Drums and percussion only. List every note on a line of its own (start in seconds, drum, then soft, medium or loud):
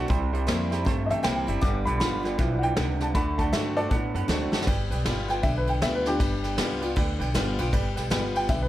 0.10 kick loud
0.10 closed hi-hat medium
0.34 closed hi-hat medium
0.48 snare loud
0.48 closed hi-hat medium
0.72 snare soft
0.72 closed hi-hat medium
0.86 kick loud
0.86 closed hi-hat medium
1.10 closed hi-hat medium
1.24 snare loud
1.24 closed hi-hat medium
1.48 closed hi-hat medium
1.62 kick loud
1.62 closed hi-hat medium
1.86 closed hi-hat medium
2.01 snare loud
2.01 closed hi-hat medium
2.25 snare soft
2.25 closed hi-hat medium
2.38 kick loud
2.38 closed hi-hat medium
2.63 closed hi-hat medium
2.77 snare loud
2.77 closed hi-hat medium
3.00 snare soft
3.00 closed hi-hat medium
3.15 kick loud
3.15 closed hi-hat medium
3.39 kick medium
3.39 closed hi-hat medium
3.53 snare loud
3.53 closed hi-hat medium
3.77 closed hi-hat medium
3.91 kick loud
3.91 closed hi-hat medium
4.15 closed hi-hat medium
4.29 snare loud
4.29 closed hi-hat medium
4.53 snare medium
4.62 snare medium
4.67 kick loud
4.67 ride medium
4.92 ride medium
5.05 snare loud
5.05 ride medium
5.29 snare soft
5.29 ride medium
5.43 kick loud
5.43 ride medium
5.67 ride medium
5.82 snare loud
5.82 ride medium
6.06 snare soft
6.06 ride medium
6.20 kick loud
6.20 ride medium
6.44 snare soft
6.44 ride medium
6.58 snare loud
6.58 ride medium
6.82 ride medium
6.97 kick loud
6.97 ride medium
7.21 ride medium
7.35 snare loud
7.35 ride medium
7.58 ride medium
7.73 kick loud
7.73 ride loud
7.97 snare soft
7.97 ride medium
8.11 snare loud
8.11 ride medium
8.35 ride medium
8.49 kick loud
8.49 snare soft
8.49 ride medium